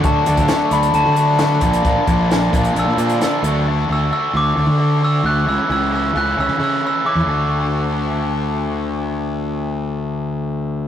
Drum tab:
HH |x-xxx-xxx-x-x-xx|x-x-x-xxx-xxx-x-|----------------|----------------|
SD |----o-------o---|----o-------o---|----------------|----------------|
BD |o--o----------o-|o-o---o---------|----------------|----------------|

HH |----------------|----------------|
SD |----------------|----------------|
BD |----------------|----------------|